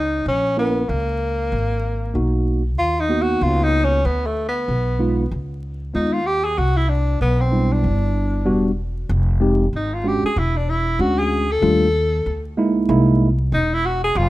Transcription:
Already playing: upright bass C#2, tenor saxophone D#4
0.26 upright bass A#1, tenor saxophone C#4
0.57 tine electric piano A#3 C#4 E4 A#4, tenor saxophone B3
0.89 upright bass C#2, tenor saxophone A#3
1.52 upright bass G#1
2.14 upright bass B1, tine electric piano B2 A#3 D#4 F#4
2.78 upright bass D#2, tenor saxophone F4
3.00 tenor saxophone D#4
3.09 tine electric piano A#3 B3 D#4 F#4
3.22 tenor saxophone F#4
3.41 upright bass C#2, tenor saxophone F4
3.63 tenor saxophone D#4
3.84 tenor saxophone C#4
4.05 upright bass D2, tenor saxophone B3
4.26 tenor saxophone A3
4.48 tenor saxophone B3
4.68 upright bass B1
4.99 tine electric piano G#3 B3 D#4 F4
5.31 upright bass C#2
5.94 upright bass D#2, tine electric piano G#3 B3 D#4 F4, tenor saxophone D#4
6.13 tenor saxophone F4
6.26 tenor saxophone G4
6.44 tenor saxophone G#4
6.58 upright bass C2, tenor saxophone F#4
6.77 tenor saxophone E4
6.89 tenor saxophone D4
7.21 upright bass B1, tenor saxophone B3
7.40 tenor saxophone C4
7.51 tine electric piano G3 B3 D4 E4
7.73 tenor saxophone D4
7.84 upright bass G1
8.45 upright bass E1, tine electric piano G3 B3 D4 F#4
9.09 upright bass F1
9.40 tine electric piano G#3 C4 D#4 G4
9.73 upright bass G#1, tenor saxophone D#4
9.94 tenor saxophone F4
10.04 tine electric piano G#3 C#4 D4 F#4, tenor saxophone G4
10.23 tenor saxophone G#4, muted upright bass stroke
10.36 upright bass E1, tenor saxophone E4
10.56 tenor saxophone D4
10.69 tenor saxophone E4
10.99 upright bass D2, tine electric piano G#3 C#4 D4 F#4, tenor saxophone F#4
11.19 tenor saxophone G#4
11.51 tenor saxophone A4
11.62 upright bass D#2, tine electric piano G3 A3 D4 F4
12.26 upright bass D2
12.57 tine electric piano G#3 A#3 D#4 E4
12.89 upright bass C2, tine electric piano G#3 A#3 D#4 E4
13.52 upright bass E1, tenor saxophone D#4
13.74 tenor saxophone E4
13.85 tenor saxophone F#4
14.04 tenor saxophone G#4
14.15 upright bass F1, tenor saxophone F4

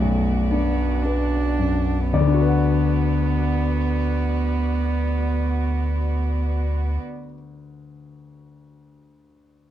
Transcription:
Already playing: sub bass B1, grand piano F#2 A4 B4, cello A3, string section B3 F#4 D5
0.00 grand piano B1
0.51 cello B3, grand piano D4
1.03 cello D4, grand piano B4
1.59 grand piano F#2
2.12 grand piano D2 D5, sub bass D2, cello B3, string section B3 F#4 D5
2.20 grand piano D3
2.27 grand piano D4
2.34 grand piano F#4
2.41 grand piano B4
2.48 grand piano F#5

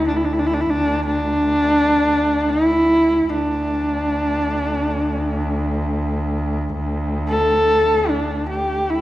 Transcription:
Already playing: cello D2
0.08 horsehead fiddle D4
0.16 horsehead fiddle E4
0.25 horsehead fiddle D4
0.33 horsehead fiddle E4
0.39 horsehead fiddle D4
0.47 horsehead fiddle E4
0.54 horsehead fiddle D4
0.61 horsehead fiddle E4
0.70 horsehead fiddle D4
1.06 horsehead fiddle D4
2.49 horsehead fiddle E4
3.28 cello D2, horsehead fiddle D4
7.29 horsehead fiddle A4
8.09 horsehead fiddle D4
8.49 horsehead fiddle G4
8.90 horsehead fiddle E4

